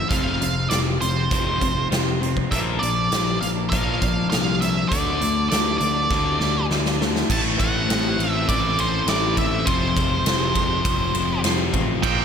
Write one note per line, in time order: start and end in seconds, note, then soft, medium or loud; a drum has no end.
0.09 0.37 F1 medium
0.09 0.39 F2 medium
0.09 0.39 C3 medium
0.09 0.40 F3 medium
0.09 0.39 F3 medium
0.09 0.40 G#3 medium
0.09 0.40 C4 medium
0.09 0.42 F4 medium
0.09 0.69 F5 loud
0.09 kick loud
0.09 closed hi-hat medium
0.40 0.67 F1 medium
0.40 0.68 F2 medium
0.40 0.68 C3 medium
0.40 0.69 F3 medium
0.40 0.69 G#3 medium
0.40 0.70 C4 medium
0.40 0.71 F4 medium
0.40 closed hi-hat medium
0.69 0.97 F1 medium
0.69 0.98 F2 medium
0.69 0.98 C3 medium
0.69 1.00 F3 medium
0.69 0.86 G#3 medium
0.69 0.85 C4 medium
0.69 0.84 F4 loud
0.69 0.78 D5 medium
0.69 snare loud
0.69 closed hi-hat medium
0.85 1.00 G#3 medium
0.85 1.00 C4 medium
0.85 1.01 F4 medium
1.01 1.27 F1 medium
1.01 1.28 F2 medium
1.01 1.28 C3 medium
1.01 1.87 C5 medium
1.01 muted clean electric guitar stroke soft
1.01 closed hi-hat medium
1.15 1.46 G#3 medium
1.15 1.45 C4 medium
1.15 1.44 F4 medium
1.31 1.57 F1 medium
1.31 1.60 F2 medium
1.31 1.60 C3 medium
1.31 1.60 F3 medium
1.31 kick loud
1.31 closed hi-hat medium
1.45 1.59 G#3 soft
1.45 1.60 C4 medium
1.45 1.61 F4 medium
1.59 1.88 F1 medium
1.59 1.88 F2 medium
1.59 1.88 C3 medium
1.59 1.88 F3 medium
1.59 1.77 G#3 medium
1.59 1.76 C4 medium
1.59 1.74 F4 medium
1.59 kick medium
1.59 closed hi-hat medium
1.76 1.89 G#3 medium
1.76 1.90 C4 medium
1.76 1.90 F4 medium
1.90 2.43 F1 medium
1.90 2.18 F2 medium
1.90 2.18 C3 medium
1.90 2.20 F3 medium
1.90 2.06 G#3 medium
1.90 2.06 C4 loud
1.90 2.05 F4 loud
1.90 snare loud
1.90 closed hi-hat medium
2.06 2.20 G#3 medium
2.06 2.21 C4 medium
2.06 2.22 F4 medium
2.21 2.48 F2 medium
2.21 2.48 C3 medium
2.21 2.49 F3 medium
2.21 2.50 G#3 medium
2.21 2.50 C4 medium
2.21 2.50 F4 medium
2.21 closed hi-hat medium
2.37 kick medium
2.50 2.78 A#1 medium
2.50 3.09 A#2 medium
2.50 2.79 A#2 medium
2.50 2.80 D3 medium
2.50 2.81 F3 medium
2.50 2.80 F3 medium
2.50 2.81 A#3 medium
2.50 2.80 A#3 medium
2.50 2.83 D4 medium
2.50 2.59 E5 medium
2.50 kick medium
2.50 closed hi-hat medium
2.79 3.08 A#1 medium
2.79 3.09 A#2 medium
2.79 3.10 D3 medium
2.79 3.09 F3 medium
2.79 3.10 F3 medium
2.79 3.11 A#3 medium
2.79 3.40 D5 medium
2.79 closed hi-hat medium
2.83 3.12 D4 medium
3.10 3.38 A#1 medium
3.10 3.56 A#2 medium
3.10 3.39 A#2 medium
3.10 3.39 D3 medium
3.10 3.26 F3 medium
3.10 3.39 F3 medium
3.10 3.25 A#3 medium
3.10 3.25 D4 medium
3.10 snare loud
3.10 closed hi-hat medium
3.25 3.40 F3 medium
3.25 3.40 A#3 medium
3.25 3.41 D4 medium
3.41 3.68 A#1 medium
3.41 3.69 A#2 medium
3.41 3.69 F3 medium
3.41 3.49 F5 medium
3.41 muted clean electric guitar stroke soft
3.41 closed hi-hat medium
3.55 3.86 F3 medium
3.55 3.85 A#3 medium
3.55 3.84 D4 medium
3.70 3.98 A#1 medium
3.70 4.00 A#2 medium
3.70 4.00 F3 loud
3.70 4.00 A#3 medium
3.70 4.26 F5 medium
3.70 kick loud
3.70 closed hi-hat medium
3.85 4.00 F3 medium
3.85 4.01 A#3 medium
3.85 4.01 D4 medium
4.00 4.28 A#1 medium
4.00 4.29 A#2 medium
4.00 4.29 D3 medium
4.00 4.16 F3 medium
4.00 4.29 F3 medium
4.00 4.15 A#3 medium
4.00 4.13 D4 medium
4.00 kick medium
4.00 closed hi-hat medium
4.15 4.29 F3 medium
4.15 4.30 A#3 medium
4.15 4.30 D4 medium
4.29 4.84 C2 medium
4.29 4.75 A#2 medium
4.29 4.58 A#2 medium
4.29 4.58 D3 medium
4.29 4.46 F3 medium
4.29 4.59 F3 medium
4.29 4.45 A#3 medium
4.29 4.43 D4 medium
4.29 4.61 F5 medium
4.29 snare medium
4.29 closed hi-hat medium
4.44 4.59 F3 medium
4.44 4.60 A#3 medium
4.44 4.61 D4 medium
4.59 4.89 A#2 medium
4.59 4.88 D3 medium
4.59 4.89 F3 medium
4.59 4.89 A#3 medium
4.59 4.90 D4 medium
4.59 4.88 E5 medium
4.59 closed hi-hat medium
4.89 5.17 D2 medium
4.89 5.18 D3 medium
4.89 5.19 D3 medium
4.89 5.19 F#3 medium
4.89 5.20 A3 medium
4.89 5.20 D4 medium
4.89 5.48 D5 medium
4.89 kick medium
4.89 closed hi-hat medium
4.93 5.20 D4 medium
5.19 5.47 D2 medium
5.19 5.48 D3 medium
5.19 5.48 F#3 medium
5.19 5.50 A3 medium
5.19 5.49 A3 medium
5.19 5.50 D4 medium
5.19 closed hi-hat medium
5.49 5.77 D2 medium
5.49 5.79 D3 medium
5.49 5.78 D3 medium
5.49 5.65 F#3 medium
5.49 5.65 A3 medium
5.49 5.78 A3 medium
5.49 5.63 D4 medium
5.49 5.77 D5 medium
5.49 snare medium
5.49 closed hi-hat medium
5.65 5.79 F#3 medium
5.65 5.79 A3 medium
5.65 5.80 D4 medium
5.78 6.07 D2 medium
5.78 6.07 D3 medium
5.78 6.08 A3 medium
5.78 6.65 D5 medium
5.78 muted clean electric guitar stroke soft
5.78 closed hi-hat medium
5.94 6.25 F#3 medium
5.94 6.24 A3 medium
5.94 6.23 D4 medium
6.10 6.36 D2 medium
6.10 6.39 D3 medium
6.10 6.39 A3 medium
6.10 6.39 D4 loud
6.10 kick medium
6.10 snare soft
6.24 6.38 F#3 medium
6.24 6.39 A3 medium
6.24 6.40 D4 medium
6.39 6.66 D2 medium
6.39 6.67 D3 medium
6.39 6.68 D3 medium
6.39 6.54 F#3 medium
6.39 6.54 A3 medium
6.39 6.68 A3 medium
6.39 6.52 D4 medium
6.39 snare medium
6.54 6.68 F#3 medium
6.54 6.69 A3 medium
6.54 6.70 D4 medium
6.69 7.22 D2 medium
6.69 6.97 D3 medium
6.69 6.98 D3 medium
6.69 6.85 F#3 medium
6.69 6.84 A3 medium
6.69 6.98 A3 medium
6.69 6.82 D4 medium
6.69 snare medium
6.83 6.98 F#3 medium
6.83 6.99 A3 medium
6.83 7.00 D4 medium
6.83 snare medium
6.98 7.27 D3 medium
6.98 7.28 F#3 medium
6.98 7.28 A3 medium
6.98 7.27 A3 medium
6.98 7.28 D4 medium
6.98 snare medium
7.16 snare medium
7.28 7.56 A1 medium
7.28 8.78 A2 medium
7.28 9.66 A2 medium
7.28 9.67 E3 medium
7.28 7.40 A5 loud
7.28 kick medium
7.28 crash loud
7.33 9.67 A3 medium
7.58 7.86 A1 medium
7.58 8.17 A3 medium
7.58 8.21 F#5 medium
7.58 kick medium
7.58 ride medium
7.88 8.15 A1 medium
7.88 9.35 C4 medium
7.88 snare loud
7.88 ride medium
8.18 8.45 A1 medium
8.18 8.76 A3 medium
8.18 8.48 E5 medium
8.18 ride medium
8.49 9.01 A1 medium
8.49 9.66 E3 medium
8.49 8.79 D5 medium
8.49 kick loud
8.49 ride medium
8.77 9.67 A3 medium
8.77 9.10 C5 medium
8.77 ride medium
9.07 9.34 A1 medium
9.07 9.67 E4 medium
9.07 9.38 D5 medium
9.07 snare loud
9.07 ride medium
9.37 9.64 A1 medium
9.37 9.67 C4 medium
9.37 9.69 E5 medium
9.37 kick medium
9.37 ride medium
9.66 9.94 F1 medium
9.66 12.02 F2 medium
9.66 12.03 C3 medium
9.66 10.84 F3 medium
9.66 12.04 F3 loud
9.66 11.40 C5 medium
9.66 kick loud
9.66 ride medium
9.96 10.23 F1 medium
9.96 10.54 G#3 medium
9.96 kick medium
9.96 ride medium
10.25 10.52 F1 medium
10.25 11.73 C4 medium
10.25 snare loud
10.25 ride loud
10.55 10.82 F1 loud
10.55 11.14 G#3 medium
10.55 kick medium
10.55 ride medium
10.85 11.11 F1 medium
10.85 12.04 F3 medium
10.85 kick loud
10.85 ride medium
11.14 11.41 F1 medium
11.14 12.04 G#3 medium
11.14 ride medium
11.43 11.70 F1 medium
11.43 12.04 F4 medium
11.43 snare loud
11.43 ride medium
11.74 12.00 A1 medium
11.74 12.04 C4 medium
11.74 kick medium
11.74 ride medium
12.03 12.25 A#1 medium
12.03 12.25 A#2 medium
12.03 12.25 F3 medium
12.03 12.25 G5 loud
12.03 kick loud
12.03 ride medium
12.07 12.25 A#3 medium